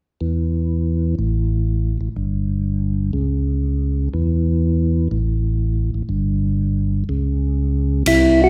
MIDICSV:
0, 0, Header, 1, 4, 480
1, 0, Start_track
1, 0, Tempo, 490998
1, 207, Time_signature, 4, 2, 24, 8
1, 8304, End_track
2, 0, Start_track
2, 0, Title_t, "Tonewheel organ"
2, 0, Program_c, 0, 16
2, 7893, Note_on_c, 0, 64, 73
2, 8229, Note_off_c, 0, 64, 0
2, 8248, Note_on_c, 0, 66, 78
2, 8304, Note_off_c, 0, 66, 0
2, 8304, End_track
3, 0, Start_track
3, 0, Title_t, "Tonewheel organ"
3, 0, Program_c, 1, 16
3, 201, Note_on_c, 1, 40, 67
3, 1125, Note_off_c, 1, 40, 0
3, 1160, Note_on_c, 1, 33, 72
3, 1933, Note_off_c, 1, 33, 0
3, 1961, Note_on_c, 1, 33, 30
3, 2041, Note_off_c, 1, 33, 0
3, 2116, Note_on_c, 1, 31, 66
3, 3043, Note_off_c, 1, 31, 0
3, 3063, Note_on_c, 1, 37, 65
3, 3997, Note_off_c, 1, 37, 0
3, 4043, Note_on_c, 1, 40, 78
3, 4968, Note_off_c, 1, 40, 0
3, 4999, Note_on_c, 1, 33, 72
3, 5774, Note_off_c, 1, 33, 0
3, 5811, Note_on_c, 1, 33, 34
3, 5888, Note_off_c, 1, 33, 0
3, 5951, Note_on_c, 1, 31, 73
3, 6882, Note_off_c, 1, 31, 0
3, 6931, Note_on_c, 1, 37, 72
3, 7851, Note_off_c, 1, 37, 0
3, 7880, Note_on_c, 1, 36, 75
3, 8304, Note_off_c, 1, 36, 0
3, 8304, End_track
4, 0, Start_track
4, 0, Title_t, "Drums"
4, 7879, Note_on_c, 9, 51, 54
4, 7977, Note_off_c, 9, 51, 0
4, 8304, End_track
0, 0, End_of_file